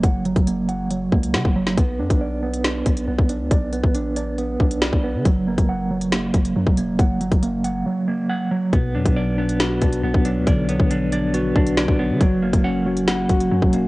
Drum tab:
HH |x-xxx-x-x--x----|x--x---xx-xx--x-|x-x-x-x-x--x----|x--x---xx-xx--x-|
SD |------------o--o|--------o-------|------------o---|--------o-------|
BD |o--o------o--o--|o--o------o--o--|o--o------o--o--|o--o------o--o--|

HH |x-xxx-x---------|x--x---xx-xx--x-|x-x-x-x-x--x----|x--x---xx-xx--x-|
SD |----------------|--------o-------|------------o---|--------o-------|
BD |o--o------------|o--o------o--o--|o--o------o--o--|o--o------o--o--|